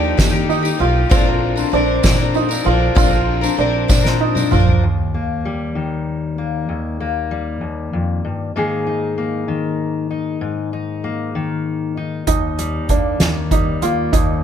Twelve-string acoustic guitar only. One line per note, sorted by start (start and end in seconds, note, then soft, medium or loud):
0.00 0.17 F3 medium
0.00 0.17 A#3 medium
0.00 0.18 D#4 medium
0.00 0.18 G4 medium
0.17 0.33 D#3 medium
0.17 0.33 F3 medium
0.17 0.34 A#3 medium
0.17 0.33 D#4 medium
0.17 0.31 G4 medium
0.32 0.65 A#3 soft
0.32 0.64 D#4 medium
0.32 0.61 G4 medium
0.63 0.78 A#3 soft
0.63 0.80 D#4 soft
0.63 0.79 G4 medium
0.78 1.10 F3 medium
0.78 1.11 A#3 medium
0.78 1.11 D#4 medium
0.78 1.11 G4 medium
1.10 1.26 A#2 medium
1.10 1.26 D3 medium
1.10 1.26 F3 medium
1.10 1.26 C4 medium
1.10 1.25 D4 loud
1.10 1.24 A#4 medium
1.25 1.58 F3 soft
1.25 1.57 C4 soft
1.25 1.56 D4 soft
1.25 1.54 A#4 medium
1.56 1.70 F3 soft
1.56 1.72 C4 medium
1.56 1.73 D4 soft
1.56 1.72 A#4 medium
1.72 2.03 F3 medium
1.72 2.03 C4 medium
1.72 2.04 D4 medium
1.72 2.04 A#4 medium
2.03 2.19 A#2 medium
2.03 2.19 D3 medium
2.03 2.19 F3 medium
2.03 2.19 C4 medium
2.03 2.18 D4 medium
2.03 2.17 A#4 medium
2.18 2.51 F3 soft
2.18 2.50 C4 soft
2.18 2.49 D4 medium
2.18 2.47 A#4 medium
2.49 2.63 F3 soft
2.49 2.64 C4 soft
2.49 2.65 D4 medium
2.49 2.65 A#4 medium
2.64 2.95 F3 medium
2.64 2.95 C4 medium
2.64 2.95 D4 medium
2.64 2.96 A#4 medium
2.95 3.11 A#2 medium
2.95 3.11 D3 medium
2.95 3.12 F3 medium
2.95 3.12 C4 medium
2.95 3.10 D4 medium
2.95 3.09 A#4 medium
3.10 3.43 F3 soft
3.10 3.42 C4 soft
3.10 3.41 D4 soft
3.10 3.40 A#4 medium
3.41 3.56 F3 soft
3.41 3.57 C4 soft
3.41 3.58 D4 medium
3.41 3.58 A#4 medium
3.57 3.88 F3 medium
3.57 3.88 C4 medium
3.57 3.89 D4 medium
3.57 3.89 A#4 medium
3.88 4.04 A#2 medium
3.88 4.05 D3 medium
3.88 4.05 F3 medium
3.88 4.04 C4 medium
3.88 4.03 D4 medium
3.88 4.02 A#4 medium
4.03 4.37 F3 soft
4.03 4.36 C4 soft
4.03 4.35 D4 soft
4.03 4.34 A#4 medium
4.35 4.50 F3 soft
4.35 4.51 C4 soft
4.35 4.51 D4 medium
4.35 4.51 A#4 soft
4.51 4.82 F3 medium
4.51 4.83 C4 medium
4.51 4.83 D4 medium
4.51 4.84 A#4 medium